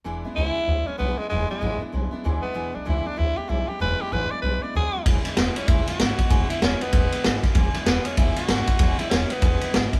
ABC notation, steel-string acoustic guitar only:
X:1
M:4/4
L:1/8
Q:"Swing" 1/4=192
K:Emix
V:1 name="Steel-string acoustic guitar"
[E,,E,G,B,DE] [G,B,DE] [E,,E,G,B,DE] [G,B,DE] [G,B,DE] [G,B,DE] [E,,E,G,B,DE] [G,B,DE] | [E,,E,G,B,DE] [G,B,DE] [E,,E,G,B,DE] [G,B,DE] [G,B,DE] [G,B,DE] [E,,E,G,B,DE] [G,B,DE] | [E,,E,G,B,DE] [G,B,DE] [E,,E,G,B,DE] [G,B,DE] [G,B,DE] [G,B,DE] [E,,E,G,B,DE] [G,B,DE] | [E,,E,G,B,DE] [G,B,DE] [E,,E,G,B,DE] [G,B,DE] [G,B,DE] [G,B,DE] [E,,E,G,B,DE] [G,B,DE] |
[E,,E,G,B,DE] [G,B,DE] [G,DE] [G,B,DE] [E,,E,G,B,DE] [G,B,DE] [G,B,DE] [G,B,DE] | [E,,E,G,B,DE] [G,B,DE] [G,B,DE] [G,B,DE] [E,,E,G,B,DE] [G,B,DE] [G,B,DE] [G,B,DE] | [E,,E,G,B,DE] [G,B,DE] [G,B,DE] [G,B,DE] [E,,E,G,B,DE] [G,B,DE] [G,B,DE] [G,B,DE] | [E,,E,G,B,DE] [G,B,DE] [G,B,DE] [G,B,DE] [E,,E,G,B,DE] [G,B,DE] [G,B,DE] [G,B,DE] |]